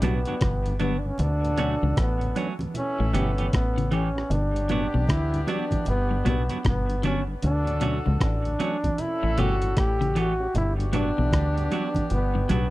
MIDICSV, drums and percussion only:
0, 0, Header, 1, 2, 480
1, 0, Start_track
1, 0, Tempo, 779828
1, 732, Time_signature, 4, 2, 24, 8
1, 7818, End_track
2, 0, Start_track
2, 0, Title_t, "Drums"
2, 11, Note_on_c, 9, 64, 82
2, 12, Note_on_c, 9, 42, 97
2, 73, Note_off_c, 9, 42, 0
2, 73, Note_off_c, 9, 64, 0
2, 156, Note_on_c, 9, 42, 61
2, 218, Note_off_c, 9, 42, 0
2, 251, Note_on_c, 9, 42, 87
2, 252, Note_on_c, 9, 63, 51
2, 254, Note_on_c, 9, 36, 117
2, 260, Note_on_c, 9, 37, 110
2, 312, Note_off_c, 9, 42, 0
2, 313, Note_off_c, 9, 63, 0
2, 316, Note_off_c, 9, 36, 0
2, 321, Note_off_c, 9, 37, 0
2, 404, Note_on_c, 9, 42, 63
2, 466, Note_off_c, 9, 42, 0
2, 490, Note_on_c, 9, 42, 72
2, 551, Note_off_c, 9, 42, 0
2, 725, Note_on_c, 9, 64, 74
2, 732, Note_on_c, 9, 42, 86
2, 787, Note_off_c, 9, 64, 0
2, 794, Note_off_c, 9, 42, 0
2, 889, Note_on_c, 9, 42, 52
2, 951, Note_off_c, 9, 42, 0
2, 961, Note_on_c, 9, 64, 70
2, 969, Note_on_c, 9, 42, 65
2, 1022, Note_off_c, 9, 64, 0
2, 1031, Note_off_c, 9, 42, 0
2, 1123, Note_on_c, 9, 63, 47
2, 1184, Note_off_c, 9, 63, 0
2, 1208, Note_on_c, 9, 63, 55
2, 1213, Note_on_c, 9, 36, 127
2, 1214, Note_on_c, 9, 42, 95
2, 1217, Note_on_c, 9, 37, 127
2, 1269, Note_off_c, 9, 63, 0
2, 1275, Note_off_c, 9, 36, 0
2, 1276, Note_off_c, 9, 42, 0
2, 1278, Note_off_c, 9, 37, 0
2, 1362, Note_on_c, 9, 42, 58
2, 1424, Note_off_c, 9, 42, 0
2, 1448, Note_on_c, 9, 63, 56
2, 1453, Note_on_c, 9, 42, 87
2, 1509, Note_off_c, 9, 63, 0
2, 1515, Note_off_c, 9, 42, 0
2, 1594, Note_on_c, 9, 63, 86
2, 1604, Note_on_c, 9, 42, 50
2, 1656, Note_off_c, 9, 63, 0
2, 1666, Note_off_c, 9, 42, 0
2, 1689, Note_on_c, 9, 64, 67
2, 1692, Note_on_c, 9, 42, 85
2, 1750, Note_off_c, 9, 64, 0
2, 1753, Note_off_c, 9, 42, 0
2, 1928, Note_on_c, 9, 64, 78
2, 1936, Note_on_c, 9, 42, 79
2, 1990, Note_off_c, 9, 64, 0
2, 1997, Note_off_c, 9, 42, 0
2, 2081, Note_on_c, 9, 42, 56
2, 2143, Note_off_c, 9, 42, 0
2, 2171, Note_on_c, 9, 63, 47
2, 2174, Note_on_c, 9, 42, 87
2, 2176, Note_on_c, 9, 36, 119
2, 2182, Note_on_c, 9, 37, 107
2, 2233, Note_off_c, 9, 63, 0
2, 2235, Note_off_c, 9, 42, 0
2, 2237, Note_off_c, 9, 36, 0
2, 2244, Note_off_c, 9, 37, 0
2, 2326, Note_on_c, 9, 42, 63
2, 2388, Note_off_c, 9, 42, 0
2, 2411, Note_on_c, 9, 42, 61
2, 2472, Note_off_c, 9, 42, 0
2, 2573, Note_on_c, 9, 37, 65
2, 2635, Note_off_c, 9, 37, 0
2, 2649, Note_on_c, 9, 64, 71
2, 2652, Note_on_c, 9, 42, 89
2, 2711, Note_off_c, 9, 64, 0
2, 2714, Note_off_c, 9, 42, 0
2, 2807, Note_on_c, 9, 42, 52
2, 2869, Note_off_c, 9, 42, 0
2, 2886, Note_on_c, 9, 64, 74
2, 2887, Note_on_c, 9, 42, 65
2, 2947, Note_off_c, 9, 64, 0
2, 2949, Note_off_c, 9, 42, 0
2, 3042, Note_on_c, 9, 63, 53
2, 3103, Note_off_c, 9, 63, 0
2, 3124, Note_on_c, 9, 63, 56
2, 3132, Note_on_c, 9, 36, 123
2, 3136, Note_on_c, 9, 42, 91
2, 3139, Note_on_c, 9, 37, 127
2, 3185, Note_off_c, 9, 63, 0
2, 3194, Note_off_c, 9, 36, 0
2, 3197, Note_off_c, 9, 42, 0
2, 3200, Note_off_c, 9, 37, 0
2, 3286, Note_on_c, 9, 42, 57
2, 3347, Note_off_c, 9, 42, 0
2, 3369, Note_on_c, 9, 63, 60
2, 3372, Note_on_c, 9, 42, 83
2, 3430, Note_off_c, 9, 63, 0
2, 3434, Note_off_c, 9, 42, 0
2, 3514, Note_on_c, 9, 63, 81
2, 3519, Note_on_c, 9, 42, 48
2, 3520, Note_on_c, 9, 36, 73
2, 3575, Note_off_c, 9, 63, 0
2, 3580, Note_off_c, 9, 42, 0
2, 3582, Note_off_c, 9, 36, 0
2, 3603, Note_on_c, 9, 64, 71
2, 3608, Note_on_c, 9, 42, 91
2, 3665, Note_off_c, 9, 64, 0
2, 3669, Note_off_c, 9, 42, 0
2, 3851, Note_on_c, 9, 64, 86
2, 3852, Note_on_c, 9, 42, 85
2, 3912, Note_off_c, 9, 64, 0
2, 3914, Note_off_c, 9, 42, 0
2, 3997, Note_on_c, 9, 42, 61
2, 4059, Note_off_c, 9, 42, 0
2, 4090, Note_on_c, 9, 42, 79
2, 4092, Note_on_c, 9, 63, 56
2, 4093, Note_on_c, 9, 36, 117
2, 4099, Note_on_c, 9, 37, 115
2, 4152, Note_off_c, 9, 42, 0
2, 4153, Note_off_c, 9, 63, 0
2, 4155, Note_off_c, 9, 36, 0
2, 4161, Note_off_c, 9, 37, 0
2, 4245, Note_on_c, 9, 42, 63
2, 4306, Note_off_c, 9, 42, 0
2, 4329, Note_on_c, 9, 42, 71
2, 4390, Note_off_c, 9, 42, 0
2, 4570, Note_on_c, 9, 42, 87
2, 4571, Note_on_c, 9, 64, 68
2, 4632, Note_off_c, 9, 42, 0
2, 4632, Note_off_c, 9, 64, 0
2, 4722, Note_on_c, 9, 42, 57
2, 4784, Note_off_c, 9, 42, 0
2, 4803, Note_on_c, 9, 64, 72
2, 4806, Note_on_c, 9, 42, 69
2, 4864, Note_off_c, 9, 64, 0
2, 4868, Note_off_c, 9, 42, 0
2, 4961, Note_on_c, 9, 63, 52
2, 5023, Note_off_c, 9, 63, 0
2, 5051, Note_on_c, 9, 36, 122
2, 5053, Note_on_c, 9, 42, 91
2, 5054, Note_on_c, 9, 63, 58
2, 5056, Note_on_c, 9, 37, 127
2, 5112, Note_off_c, 9, 36, 0
2, 5114, Note_off_c, 9, 42, 0
2, 5115, Note_off_c, 9, 63, 0
2, 5117, Note_off_c, 9, 37, 0
2, 5203, Note_on_c, 9, 42, 55
2, 5264, Note_off_c, 9, 42, 0
2, 5293, Note_on_c, 9, 42, 83
2, 5296, Note_on_c, 9, 63, 59
2, 5354, Note_off_c, 9, 42, 0
2, 5357, Note_off_c, 9, 63, 0
2, 5440, Note_on_c, 9, 63, 87
2, 5442, Note_on_c, 9, 36, 69
2, 5443, Note_on_c, 9, 42, 49
2, 5501, Note_off_c, 9, 63, 0
2, 5503, Note_off_c, 9, 36, 0
2, 5505, Note_off_c, 9, 42, 0
2, 5529, Note_on_c, 9, 42, 90
2, 5532, Note_on_c, 9, 64, 69
2, 5591, Note_off_c, 9, 42, 0
2, 5593, Note_off_c, 9, 64, 0
2, 5771, Note_on_c, 9, 42, 85
2, 5773, Note_on_c, 9, 64, 93
2, 5832, Note_off_c, 9, 42, 0
2, 5835, Note_off_c, 9, 64, 0
2, 5919, Note_on_c, 9, 42, 54
2, 5981, Note_off_c, 9, 42, 0
2, 6012, Note_on_c, 9, 42, 97
2, 6014, Note_on_c, 9, 36, 127
2, 6016, Note_on_c, 9, 63, 55
2, 6020, Note_on_c, 9, 37, 102
2, 6073, Note_off_c, 9, 42, 0
2, 6075, Note_off_c, 9, 36, 0
2, 6078, Note_off_c, 9, 63, 0
2, 6082, Note_off_c, 9, 37, 0
2, 6166, Note_on_c, 9, 42, 57
2, 6227, Note_off_c, 9, 42, 0
2, 6254, Note_on_c, 9, 42, 78
2, 6315, Note_off_c, 9, 42, 0
2, 6490, Note_on_c, 9, 64, 73
2, 6493, Note_on_c, 9, 42, 88
2, 6551, Note_off_c, 9, 64, 0
2, 6555, Note_off_c, 9, 42, 0
2, 6648, Note_on_c, 9, 42, 53
2, 6709, Note_off_c, 9, 42, 0
2, 6727, Note_on_c, 9, 42, 67
2, 6727, Note_on_c, 9, 64, 72
2, 6789, Note_off_c, 9, 42, 0
2, 6789, Note_off_c, 9, 64, 0
2, 6881, Note_on_c, 9, 63, 49
2, 6943, Note_off_c, 9, 63, 0
2, 6962, Note_on_c, 9, 63, 57
2, 6971, Note_on_c, 9, 36, 123
2, 6975, Note_on_c, 9, 42, 91
2, 6977, Note_on_c, 9, 37, 127
2, 7024, Note_off_c, 9, 63, 0
2, 7033, Note_off_c, 9, 36, 0
2, 7036, Note_off_c, 9, 42, 0
2, 7039, Note_off_c, 9, 37, 0
2, 7125, Note_on_c, 9, 42, 57
2, 7187, Note_off_c, 9, 42, 0
2, 7207, Note_on_c, 9, 63, 60
2, 7211, Note_on_c, 9, 42, 76
2, 7269, Note_off_c, 9, 63, 0
2, 7273, Note_off_c, 9, 42, 0
2, 7352, Note_on_c, 9, 63, 87
2, 7360, Note_on_c, 9, 36, 58
2, 7361, Note_on_c, 9, 42, 52
2, 7414, Note_off_c, 9, 63, 0
2, 7422, Note_off_c, 9, 36, 0
2, 7422, Note_off_c, 9, 42, 0
2, 7448, Note_on_c, 9, 42, 86
2, 7450, Note_on_c, 9, 64, 68
2, 7510, Note_off_c, 9, 42, 0
2, 7512, Note_off_c, 9, 64, 0
2, 7688, Note_on_c, 9, 64, 82
2, 7691, Note_on_c, 9, 42, 96
2, 7749, Note_off_c, 9, 64, 0
2, 7752, Note_off_c, 9, 42, 0
2, 7818, End_track
0, 0, End_of_file